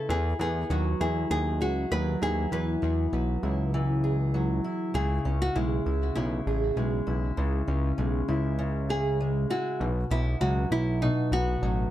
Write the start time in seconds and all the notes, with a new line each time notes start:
Already playing: G#3 C#4 E4 G#4
0.09 E2 G#4
0.39 E2 B3 G#4
0.70 D#2 F#3 F#4
1.00 E2 E4 G#4
1.31 D#2 G#4
1.61 C#2 F#4 G#4
1.91 D#2 F#3 B4
2.22 D#2 E4 G#4
2.52 E2 E3 B4
2.82 E2 B3
3.13 B1 F#3
3.43 C#2 E4
3.74 E3
4.04 G#4
4.34 F#3
4.64 E4
4.94 C#2 C#3 G#4
5.25 C#2 C#4
5.42 F#4
5.56 B1 G#3 E4
5.86 C#2 E4
6.15 B1 C#3 E4
6.46 A1 G#4
6.76 B1 G#3
7.07 B1 E4
7.37 C#2 C#3
7.68 C#2 C#4
7.98 B1 G#3
8.28 C#2 E4
8.59 C#3
8.89 G#4
9.20 G#3
9.50 E4 F#4
9.80 B1 B2
10.10 B1 B3 E4
10.41 C#2 F#3 F#4
10.71 B1 E4
11.02 B2 D#4
11.32 B1 B3 F#4
11.62 A1 F#3